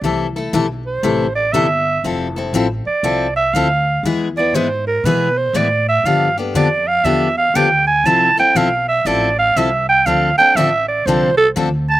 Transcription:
X:1
M:4/4
L:1/8
Q:"Swing" 1/4=120
K:Flyd
V:1 name="Clarinet"
z3 c2 d e2 | z3 d2 e f2 | z d c _B =B c d e | f A d f e f g ^g |
a g f e d f e g | f g e d c A z a |]
V:2 name="Steel-string acoustic guitar"
[C,E,A,EA] [A,EA] [C,E,A,EA] z [C,E,A,EA] z [C,E,A,EA] z | [F,CEA] [CEA] [F,CEA] z [F,CEA] z [F,CEA] z | [E,^G,B,E^G] [B,EG] [E,G,B,EG] z [E,G,B,EG] z [E,G,B,EG] z | [D,F,B,DG] [B,DG] [D,F,B,DG] z [D,F,B,DG] z [D,F,B,DG] z |
[F,CEA] [CEA] [F,CEA] z [F,CEA] z [F,CEA] z | [D,F,CDA] [CDA] [D,F,CDA] z [D,F,CDA] z [D,F,CDA] z |]
V:3 name="Upright bass" clef=bass
C,,2 B,,,2 A,,,2 G,,,2 | F,,,2 A,,, z C,,2 D,,2 | E,,2 ^G,,2 B,,2 A,,2 | G,,2 F,,2 E,,2 D,,2 |
C,, z B,,,2 A,,,2 C,,2 | D,, z A,,,2 C,,2 D,,2 |]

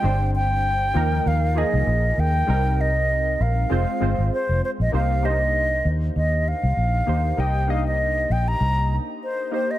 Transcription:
X:1
M:4/4
L:1/16
Q:"Swing 16ths" 1/4=98
K:Cm
V:1 name="Flute"
g2 g6 f2 e4 g2- | g2 e4 f6 c2 c e | f2 e6 e2 f6 | g2 f e3 g b3 z2 c2 c e |]
V:2 name="Synth keys"
[G,CDc]6 [F,B,EB]4 [F,B,EA]4 z2 | [G,CEB]6 z2 [A,CFc]2 [A,CFc]4 z2 | [B,EGc]2 [B,DEGc]6 z6 [B,EGc]2 | [B,EGe]2 [B,DEGe]6 z6 [B,EGc]2 |]
V:3 name="Fingered electric bass" clef=bass
G,,,6 E,,2 E,,3 C,, B,,,2 E,,2 | C,,6 B,,,2 F,,, z G,,, A,,, z F,,, z B,,, | C,,6 E,,2 E,,3 C,, B,,,2 E,,2 | C,,6 B,,,2 C,,3 z4 z |]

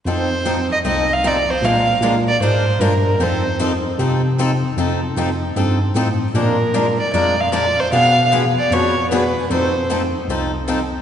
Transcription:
X:1
M:4/4
L:1/8
Q:"Swing" 1/4=153
K:Fmix
V:1 name="Violin"
c3 e e f d c | f2 z d c2 B2 | c2 z6 | z8 |
B3 d d f d c | f2 z d _d2 =B2 | c2 z6 |]
V:2 name="Steel-string acoustic guitar"
[F,CEA] z [F,CEA] z [F,CEA] z [F,CEA] z | [F,_A,DFB] z [F,A,DFB] z [F,A,DFB] z [F,A,DFB] z | [F,CEA] z [F,CEA] z [F,CEA] z [F,CEA] z | [F,CEA] z [F,CEA] z [F,CEA] z [F,CEA] z |
[F,_A,DFB] z [F,A,DFB] z [F,A,DFB] z [F,A,DFB] z | [=B,,F,=B,D^G=B] z [B,,F,B,DGB] z [B,,F,B,DGB] z [B,,F,B,DGB] z | [F,CEA] z [F,CEA] z [F,CEA] z [F,CEA] z |]
V:3 name="Steel-string acoustic guitar"
[F,CEA] z [F,CEA] z [F,CEA] z [F,CEA] z | [F,_A,DFB] z [F,A,DFB] z [F,A,DFB] z [F,A,DFB] z | [F,CEA] z [F,CEA] z [F,CEA] z [F,CEA] z | [F,CEA] z [F,CEA] z [F,CEA] z [F,CEA] z |
[F,_A,DFB] z [F,A,DFB] z [F,A,DFB] z [F,A,DFB] z | [=B,,F,=B,D^G=B] z [B,,F,B,DGB] z [B,,F,B,DGB] z [B,,F,B,DGB] z | [F,CEA] z [F,CEA] z [F,CEA] z [F,CEA] z |]
V:4 name="Tine electric piano" clef=bass
F,,4 C,,4 | B,,2 B,,2 _A,,2 G,,2 | F,,4 C,4 | F,,2 F,,2 G,,2 A,,2 |
B,,4 F,,4 | =B,,4 F,,4 | F,,4 C,,4 |]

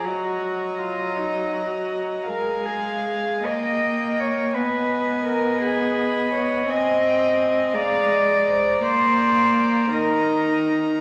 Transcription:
X:1
M:6/8
L:1/8
Q:3/8=55
K:Abdor
V:1 name="Violin"
b6 | a3 =g3 | a3 c'3 | [K:Ablyd] a g a b3- |
b6 |]
V:2 name="Violin"
e6 | f3 e3 | e6- | [K:Ablyd] e3 f e c |
d3 e3 |]
V:3 name="Cello"
G2 F E G2 | B A2 e2 d | c2 B A2 d | [K:Ablyd] e3 d3 |
c3 B z2 |]
V:4 name="Viola"
G,6 | A,3 B,3 | C6 | [K:Ablyd] C3 A,3 |
B,3 E,3 |]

